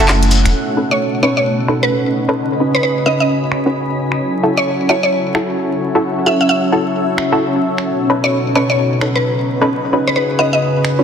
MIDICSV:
0, 0, Header, 1, 8, 480
1, 0, Start_track
1, 0, Tempo, 458015
1, 566, Time_signature, 4, 2, 24, 8
1, 11567, End_track
2, 0, Start_track
2, 0, Title_t, "Ambient pad"
2, 0, Program_c, 0, 92
2, 0, Note_on_c, 0, 57, 70
2, 0, Note_on_c, 0, 61, 92
2, 0, Note_on_c, 0, 76, 87
2, 0, Note_on_c, 0, 78, 87
2, 551, Note_off_c, 0, 61, 0
2, 564, Note_off_c, 0, 76, 0
2, 564, Note_on_c, 0, 61, 68
2, 1346, Note_off_c, 0, 78, 0
2, 1452, Note_on_c, 0, 75, 82
2, 1453, Note_on_c, 0, 83, 70
2, 2484, Note_off_c, 0, 57, 0
2, 3027, Note_on_c, 0, 66, 89
2, 4405, Note_off_c, 0, 75, 0
2, 5234, Note_off_c, 0, 83, 0
2, 5492, Note_on_c, 0, 76, 89
2, 8246, Note_off_c, 0, 76, 0
2, 8624, Note_on_c, 0, 71, 70
2, 9026, Note_off_c, 0, 66, 0
2, 9132, Note_on_c, 0, 75, 77
2, 10880, Note_on_c, 0, 78, 84
2, 11567, Note_off_c, 0, 61, 0
2, 11567, Note_off_c, 0, 71, 0
2, 11567, Note_off_c, 0, 75, 0
2, 11567, Note_off_c, 0, 78, 0
2, 11567, End_track
3, 0, Start_track
3, 0, Title_t, "Synth pluck"
3, 0, Program_c, 1, 84
3, 957, Note_on_c, 1, 73, 88
3, 1128, Note_off_c, 1, 73, 0
3, 1287, Note_on_c, 1, 73, 88
3, 1383, Note_off_c, 1, 73, 0
3, 1436, Note_on_c, 1, 73, 72
3, 1494, Note_off_c, 1, 73, 0
3, 1917, Note_on_c, 1, 71, 89
3, 2088, Note_off_c, 1, 71, 0
3, 2877, Note_on_c, 1, 71, 81
3, 2934, Note_off_c, 1, 71, 0
3, 2967, Note_on_c, 1, 71, 76
3, 3063, Note_off_c, 1, 71, 0
3, 3206, Note_on_c, 1, 75, 85
3, 3302, Note_off_c, 1, 75, 0
3, 3357, Note_on_c, 1, 75, 69
3, 3414, Note_off_c, 1, 75, 0
3, 4794, Note_on_c, 1, 73, 83
3, 4966, Note_off_c, 1, 73, 0
3, 5125, Note_on_c, 1, 73, 85
3, 5222, Note_off_c, 1, 73, 0
3, 5274, Note_on_c, 1, 73, 71
3, 5333, Note_off_c, 1, 73, 0
3, 6564, Note_on_c, 1, 76, 85
3, 6661, Note_off_c, 1, 76, 0
3, 6714, Note_on_c, 1, 76, 75
3, 6772, Note_off_c, 1, 76, 0
3, 6802, Note_on_c, 1, 76, 90
3, 7194, Note_off_c, 1, 76, 0
3, 8634, Note_on_c, 1, 73, 84
3, 8806, Note_off_c, 1, 73, 0
3, 8965, Note_on_c, 1, 73, 84
3, 9062, Note_off_c, 1, 73, 0
3, 9114, Note_on_c, 1, 73, 73
3, 9173, Note_off_c, 1, 73, 0
3, 9596, Note_on_c, 1, 71, 87
3, 9767, Note_off_c, 1, 71, 0
3, 10558, Note_on_c, 1, 71, 83
3, 10615, Note_off_c, 1, 71, 0
3, 10646, Note_on_c, 1, 71, 76
3, 10742, Note_off_c, 1, 71, 0
3, 10886, Note_on_c, 1, 75, 85
3, 10982, Note_off_c, 1, 75, 0
3, 11036, Note_on_c, 1, 75, 72
3, 11093, Note_off_c, 1, 75, 0
3, 11567, End_track
4, 0, Start_track
4, 0, Title_t, "Synth stab"
4, 0, Program_c, 2, 62
4, 806, Note_on_c, 2, 61, 80
4, 806, Note_on_c, 2, 63, 67
4, 806, Note_on_c, 2, 69, 70
4, 806, Note_on_c, 2, 71, 82
4, 1264, Note_off_c, 2, 71, 0
4, 1265, Note_off_c, 2, 61, 0
4, 1265, Note_off_c, 2, 63, 0
4, 1265, Note_off_c, 2, 69, 0
4, 1286, Note_on_c, 2, 61, 88
4, 1286, Note_on_c, 2, 63, 79
4, 1286, Note_on_c, 2, 71, 96
4, 1287, Note_on_c, 2, 69, 76
4, 1426, Note_off_c, 2, 63, 0
4, 1426, Note_off_c, 2, 71, 0
4, 1427, Note_off_c, 2, 61, 0
4, 1427, Note_off_c, 2, 69, 0
4, 1765, Note_on_c, 2, 61, 71
4, 1765, Note_on_c, 2, 63, 69
4, 1765, Note_on_c, 2, 69, 72
4, 1765, Note_on_c, 2, 71, 81
4, 1906, Note_off_c, 2, 61, 0
4, 1906, Note_off_c, 2, 63, 0
4, 1906, Note_off_c, 2, 69, 0
4, 1906, Note_off_c, 2, 71, 0
4, 2395, Note_on_c, 2, 61, 89
4, 2396, Note_on_c, 2, 63, 84
4, 2396, Note_on_c, 2, 69, 80
4, 2396, Note_on_c, 2, 71, 96
4, 2475, Note_off_c, 2, 61, 0
4, 2475, Note_off_c, 2, 63, 0
4, 2475, Note_off_c, 2, 69, 0
4, 2475, Note_off_c, 2, 71, 0
4, 2725, Note_on_c, 2, 61, 70
4, 2725, Note_on_c, 2, 63, 66
4, 2725, Note_on_c, 2, 66, 67
4, 2725, Note_on_c, 2, 71, 74
4, 2920, Note_off_c, 2, 61, 0
4, 2920, Note_off_c, 2, 63, 0
4, 2920, Note_off_c, 2, 66, 0
4, 2920, Note_off_c, 2, 71, 0
4, 3206, Note_on_c, 2, 61, 76
4, 3206, Note_on_c, 2, 63, 67
4, 3206, Note_on_c, 2, 66, 66
4, 3206, Note_on_c, 2, 71, 81
4, 3346, Note_off_c, 2, 61, 0
4, 3346, Note_off_c, 2, 63, 0
4, 3346, Note_off_c, 2, 66, 0
4, 3346, Note_off_c, 2, 71, 0
4, 3836, Note_on_c, 2, 61, 72
4, 3836, Note_on_c, 2, 63, 65
4, 3836, Note_on_c, 2, 66, 71
4, 3836, Note_on_c, 2, 71, 82
4, 3920, Note_off_c, 2, 61, 0
4, 3920, Note_off_c, 2, 63, 0
4, 3920, Note_off_c, 2, 66, 0
4, 3920, Note_off_c, 2, 71, 0
4, 4646, Note_on_c, 2, 64, 76
4, 4646, Note_on_c, 2, 66, 70
4, 4646, Note_on_c, 2, 69, 88
4, 5104, Note_off_c, 2, 64, 0
4, 5104, Note_off_c, 2, 66, 0
4, 5105, Note_off_c, 2, 69, 0
4, 5127, Note_on_c, 2, 64, 90
4, 5127, Note_on_c, 2, 66, 81
4, 5127, Note_on_c, 2, 69, 91
4, 5267, Note_off_c, 2, 64, 0
4, 5267, Note_off_c, 2, 66, 0
4, 5267, Note_off_c, 2, 69, 0
4, 5606, Note_on_c, 2, 64, 75
4, 5607, Note_on_c, 2, 66, 71
4, 5607, Note_on_c, 2, 69, 85
4, 5747, Note_off_c, 2, 64, 0
4, 5747, Note_off_c, 2, 66, 0
4, 5747, Note_off_c, 2, 69, 0
4, 6236, Note_on_c, 2, 64, 91
4, 6236, Note_on_c, 2, 66, 81
4, 6236, Note_on_c, 2, 69, 96
4, 6320, Note_off_c, 2, 64, 0
4, 6320, Note_off_c, 2, 66, 0
4, 6320, Note_off_c, 2, 69, 0
4, 6565, Note_on_c, 2, 64, 73
4, 6565, Note_on_c, 2, 69, 82
4, 6566, Note_on_c, 2, 66, 67
4, 6760, Note_off_c, 2, 64, 0
4, 6760, Note_off_c, 2, 66, 0
4, 6760, Note_off_c, 2, 69, 0
4, 7046, Note_on_c, 2, 64, 71
4, 7046, Note_on_c, 2, 66, 69
4, 7046, Note_on_c, 2, 69, 82
4, 7186, Note_off_c, 2, 64, 0
4, 7186, Note_off_c, 2, 66, 0
4, 7186, Note_off_c, 2, 69, 0
4, 7676, Note_on_c, 2, 64, 89
4, 7676, Note_on_c, 2, 66, 78
4, 7676, Note_on_c, 2, 69, 97
4, 8235, Note_off_c, 2, 64, 0
4, 8235, Note_off_c, 2, 66, 0
4, 8235, Note_off_c, 2, 69, 0
4, 8485, Note_on_c, 2, 61, 80
4, 8485, Note_on_c, 2, 63, 71
4, 8485, Note_on_c, 2, 69, 70
4, 8486, Note_on_c, 2, 71, 85
4, 8944, Note_off_c, 2, 61, 0
4, 8944, Note_off_c, 2, 63, 0
4, 8944, Note_off_c, 2, 69, 0
4, 8944, Note_off_c, 2, 71, 0
4, 8965, Note_on_c, 2, 61, 86
4, 8965, Note_on_c, 2, 63, 84
4, 8965, Note_on_c, 2, 69, 83
4, 8965, Note_on_c, 2, 71, 96
4, 9106, Note_off_c, 2, 61, 0
4, 9106, Note_off_c, 2, 63, 0
4, 9106, Note_off_c, 2, 69, 0
4, 9106, Note_off_c, 2, 71, 0
4, 9445, Note_on_c, 2, 63, 72
4, 9445, Note_on_c, 2, 69, 71
4, 9445, Note_on_c, 2, 71, 83
4, 9446, Note_on_c, 2, 61, 76
4, 9586, Note_off_c, 2, 61, 0
4, 9586, Note_off_c, 2, 63, 0
4, 9586, Note_off_c, 2, 69, 0
4, 9586, Note_off_c, 2, 71, 0
4, 10076, Note_on_c, 2, 61, 87
4, 10076, Note_on_c, 2, 63, 81
4, 10076, Note_on_c, 2, 69, 84
4, 10076, Note_on_c, 2, 71, 100
4, 10155, Note_off_c, 2, 61, 0
4, 10155, Note_off_c, 2, 63, 0
4, 10155, Note_off_c, 2, 69, 0
4, 10155, Note_off_c, 2, 71, 0
4, 10406, Note_on_c, 2, 61, 74
4, 10406, Note_on_c, 2, 63, 67
4, 10406, Note_on_c, 2, 66, 64
4, 10406, Note_on_c, 2, 71, 81
4, 10601, Note_off_c, 2, 61, 0
4, 10601, Note_off_c, 2, 63, 0
4, 10601, Note_off_c, 2, 66, 0
4, 10601, Note_off_c, 2, 71, 0
4, 10886, Note_on_c, 2, 63, 66
4, 10886, Note_on_c, 2, 66, 70
4, 10886, Note_on_c, 2, 71, 85
4, 10887, Note_on_c, 2, 61, 72
4, 11027, Note_off_c, 2, 61, 0
4, 11027, Note_off_c, 2, 63, 0
4, 11027, Note_off_c, 2, 66, 0
4, 11027, Note_off_c, 2, 71, 0
4, 11516, Note_on_c, 2, 61, 74
4, 11516, Note_on_c, 2, 63, 70
4, 11516, Note_on_c, 2, 66, 67
4, 11516, Note_on_c, 2, 71, 81
4, 11567, Note_off_c, 2, 61, 0
4, 11567, Note_off_c, 2, 63, 0
4, 11567, Note_off_c, 2, 66, 0
4, 11567, Note_off_c, 2, 71, 0
4, 11567, End_track
5, 0, Start_track
5, 0, Title_t, "Analog synth pad"
5, 0, Program_c, 3, 89
5, 0, Note_on_c, 3, 57, 84
5, 0, Note_on_c, 3, 61, 80
5, 0, Note_on_c, 3, 64, 75
5, 0, Note_on_c, 3, 80, 93
5, 527, Note_off_c, 3, 57, 0
5, 527, Note_off_c, 3, 61, 0
5, 527, Note_off_c, 3, 64, 0
5, 527, Note_off_c, 3, 80, 0
5, 565, Note_on_c, 3, 47, 76
5, 565, Note_on_c, 3, 61, 70
5, 565, Note_on_c, 3, 63, 69
5, 565, Note_on_c, 3, 66, 70
5, 566, Note_on_c, 3, 69, 81
5, 2466, Note_off_c, 3, 47, 0
5, 2466, Note_off_c, 3, 61, 0
5, 2467, Note_off_c, 3, 69, 0
5, 2484, Note_on_c, 3, 49, 77
5, 2484, Note_on_c, 3, 71, 87
5, 2484, Note_on_c, 3, 80, 74
5, 4367, Note_off_c, 3, 63, 0
5, 4367, Note_off_c, 3, 66, 0
5, 4386, Note_off_c, 3, 49, 0
5, 4386, Note_off_c, 3, 71, 0
5, 4404, Note_on_c, 3, 73, 92
5, 4405, Note_on_c, 3, 64, 69
5, 4405, Note_on_c, 3, 69, 70
5, 4406, Note_on_c, 3, 54, 79
5, 8203, Note_off_c, 3, 80, 0
5, 8207, Note_off_c, 3, 54, 0
5, 8207, Note_off_c, 3, 64, 0
5, 8246, Note_on_c, 3, 47, 79
5, 8246, Note_on_c, 3, 63, 70
5, 8246, Note_on_c, 3, 66, 73
5, 10123, Note_off_c, 3, 69, 0
5, 10123, Note_off_c, 3, 73, 0
5, 10147, Note_off_c, 3, 47, 0
5, 10147, Note_off_c, 3, 66, 0
5, 10164, Note_on_c, 3, 68, 77
5, 10165, Note_on_c, 3, 49, 81
5, 10165, Note_on_c, 3, 66, 69
5, 10165, Note_on_c, 3, 71, 89
5, 11567, Note_off_c, 3, 49, 0
5, 11567, Note_off_c, 3, 63, 0
5, 11567, Note_off_c, 3, 66, 0
5, 11567, Note_off_c, 3, 68, 0
5, 11567, Note_off_c, 3, 71, 0
5, 11567, End_track
6, 0, Start_track
6, 0, Title_t, "Sub bass"
6, 0, Program_c, 4, 38
6, 0, Note_on_c, 4, 30, 92
6, 471, Note_off_c, 4, 30, 0
6, 477, Note_on_c, 4, 28, 92
6, 557, Note_off_c, 4, 28, 0
6, 11567, End_track
7, 0, Start_track
7, 0, Title_t, "Shekere"
7, 87, Note_on_c, 9, 82, 47
7, 192, Note_off_c, 9, 82, 0
7, 236, Note_on_c, 9, 82, 24
7, 327, Note_off_c, 9, 82, 0
7, 327, Note_on_c, 9, 82, 97
7, 431, Note_off_c, 9, 82, 0
7, 477, Note_on_c, 9, 82, 36
7, 582, Note_off_c, 9, 82, 0
7, 11567, End_track
8, 0, Start_track
8, 0, Title_t, "Drums"
8, 86, Note_on_c, 9, 39, 117
8, 191, Note_off_c, 9, 39, 0
8, 237, Note_on_c, 9, 42, 58
8, 327, Note_on_c, 9, 46, 94
8, 342, Note_off_c, 9, 42, 0
8, 432, Note_off_c, 9, 46, 0
8, 477, Note_on_c, 9, 26, 31
8, 477, Note_on_c, 9, 42, 67
8, 582, Note_off_c, 9, 26, 0
8, 582, Note_off_c, 9, 42, 0
8, 1765, Note_on_c, 9, 26, 63
8, 1870, Note_off_c, 9, 26, 0
8, 3685, Note_on_c, 9, 26, 65
8, 3790, Note_off_c, 9, 26, 0
8, 4315, Note_on_c, 9, 26, 29
8, 4420, Note_off_c, 9, 26, 0
8, 5605, Note_on_c, 9, 26, 62
8, 5710, Note_off_c, 9, 26, 0
8, 7526, Note_on_c, 9, 26, 63
8, 7630, Note_off_c, 9, 26, 0
8, 8157, Note_on_c, 9, 26, 28
8, 8262, Note_off_c, 9, 26, 0
8, 9447, Note_on_c, 9, 26, 58
8, 9552, Note_off_c, 9, 26, 0
8, 11367, Note_on_c, 9, 26, 63
8, 11471, Note_off_c, 9, 26, 0
8, 11567, End_track
0, 0, End_of_file